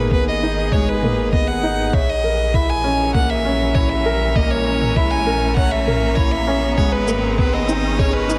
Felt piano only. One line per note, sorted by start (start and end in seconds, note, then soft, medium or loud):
0.00 0.74 G#3 medium
0.00 1.04 A#3 medium
0.00 0.13 B3 medium
0.00 0.43 D#4 medium
0.00 1.96 G#4 medium
0.13 0.30 B3 medium
0.43 0.71 D#4 medium
0.74 1.02 G#3 medium
1.04 1.32 A#3 medium
1.33 1.62 B3 medium
1.63 1.81 D#4 medium
1.93 2.11 C#5 medium
2.24 2.53 A#4 medium
2.54 2.83 E4 medium
2.84 3.13 C#4 medium
3.15 3.44 A#3 medium
3.45 3.74 C#4 medium
3.76 3.93 E4 medium
4.06 4.35 A#4 loud
4.36 4.65 A#3 medium
4.66 4.95 C#4 medium
4.97 5.25 E4 medium
5.27 5.44 A#4 medium
5.57 5.74 C#5 medium
5.87 6.16 A#4 medium
6.17 6.46 E4 medium
6.47 6.77 C#4 loud
6.77 7.07 G#3 medium
7.08 7.37 A#3 medium
7.38 7.67 B3 loud
7.69 7.86 D#4 medium
7.99 8.16 G#4 medium
8.29 8.39 D#4 medium